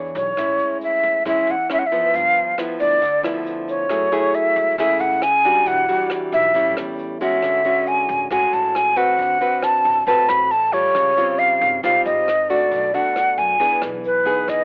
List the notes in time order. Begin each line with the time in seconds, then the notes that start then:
Already playing: E2 E3 D4 G#4 C#5
0.15 B1 C#5, kick, closed hi-hat
0.37 A1 A2 G#3 C#4 E4, kick, cross-stick, closed hi-hat
0.59 closed hi-hat
0.81 E5, closed hi-hat
1.03 E2, kick, closed hi-hat
1.25 E2 E3 G#3 C#4 E4 E5, kick, cross-stick, closed hi-hat
1.47 E2 F#5, closed hi-hat
1.70 G#3 C#4 E4 E5, cross-stick, closed hi-hat
1.79 F#5
1.86 E5
1.92 F3 B3, kick, closed hi-hat
2.14 G1 G2 F5, kick, closed hi-hat
2.36 closed hi-hat
2.58 F3 B3 E4, cross-stick, closed hi-hat
2.80 D2 D5, kick, closed hi-hat
3.02 D2 D3, kick, closed hi-hat
3.23 D2 F3 B3 E4, cross-stick, closed hi-hat
3.46 closed hi-hat
3.68 C#5, kick, closed hi-hat
3.89 F#1 F#3 A3 E4 G#4, kick, cross-stick, closed hi-hat
4.12 A3 E4 G#4, closed hi-hat
4.34 E5, closed hi-hat
4.56 C#2, kick, closed hi-hat
4.78 C#2 C#3 A3 E4 G#4 E5, kick, cross-stick, closed hi-hat
5.00 C#2 F#5, closed hi-hat
5.22 G#5, cross-stick, closed hi-hat
5.44 G3 D4 F#4, kick, closed hi-hat
5.66 E1 E3 F#5, kick, closed hi-hat
5.88 G3 D4 F#4, closed hi-hat
6.10 cross-stick, closed hi-hat
6.32 B1 E5, kick, closed hi-hat
6.54 A1 A2 G3 C#4 E4, kick, closed hi-hat
6.76 E2, cross-stick, closed hi-hat
6.98 closed hi-hat
7.20 G#3 C#4 F#4 E5, kick, closed hi-hat
7.42 D2 D3, kick, cross-stick, closed hi-hat
7.64 G#3 C#4 F#4, closed hi-hat
7.87 G#5, closed hi-hat
8.09 A1, kick, closed hi-hat
8.31 A1 A2 G#3 C#4 F#4 G#5, kick, cross-stick, closed hi-hat
8.53 A1 A5, closed hi-hat
8.75 G#5, cross-stick, closed hi-hat
8.96 C4 F#4 B4 F#5, kick, closed hi-hat
9.19 D2 D3, kick, closed hi-hat
9.41 C4 F#4 B4, closed hi-hat
9.63 A5, cross-stick, closed hi-hat
9.85 A1, kick, closed hi-hat
10.07 A1 A2 C4 F#4 B4 A5, kick, closed hi-hat
10.29 A1 B5, cross-stick, closed hi-hat
10.51 A5, closed hi-hat
10.73 G3 F4 C#5, kick, closed hi-hat
10.95 C#2 C#3, kick, cross-stick, closed hi-hat
11.17 G3 C4 F4, closed hi-hat
11.39 F5, closed hi-hat
11.61 G#1, kick, closed hi-hat
11.83 G#1 G#2 G3 C4 F4 F5, kick, cross-stick, closed hi-hat
12.05 G#1 D#5, closed hi-hat
12.28 cross-stick, closed hi-hat
12.50 A3 D4 F#4 D5, kick, closed hi-hat
12.72 B1 B2, kick, closed hi-hat
12.94 A3 D4 F#4 F#5, closed hi-hat
13.16 cross-stick, closed hi-hat
13.38 F#2 G#5, kick, closed hi-hat
13.60 E2 E3 B3 D4 G#4, kick, closed hi-hat
13.82 B1, cross-stick, closed hi-hat
14.04 B4, closed hi-hat
14.26 B3 D#4 G#4, kick, closed hi-hat
14.48 E2 E3 D#5, kick, cross-stick, closed hi-hat